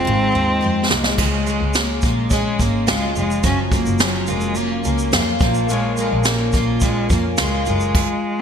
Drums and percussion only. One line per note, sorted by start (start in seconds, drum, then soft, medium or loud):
0.90 snare medium
1.04 snare medium
1.18 kick loud
1.18 crash medium
1.47 shaker soft
1.74 snare loud
1.74 shaker medium
2.02 kick medium
2.02 shaker soft
2.30 kick medium
2.30 shaker medium
2.60 kick medium
2.60 shaker medium
2.88 snare loud
2.88 shaker medium
3.16 shaker soft
3.31 shaker soft
3.44 kick medium
3.44 shaker medium
3.72 kick medium
3.72 shaker soft
3.86 shaker soft
3.99 snare loud
3.99 shaker medium
4.27 shaker soft
4.41 shaker soft
4.55 shaker medium
4.84 shaker medium
4.98 shaker medium
5.12 snare loud
5.12 shaker medium
5.40 kick loud
5.40 shaker soft
5.54 shaker soft
5.69 shaker medium
5.97 shaker soft
6.24 snare loud
6.24 shaker medium
6.52 kick medium
6.52 shaker medium
6.81 kick medium
6.81 shaker medium
7.10 kick medium
7.10 shaker medium
7.37 snare loud
7.37 shaker medium
7.66 shaker soft
7.80 shaker soft
7.95 kick loud
7.95 crash medium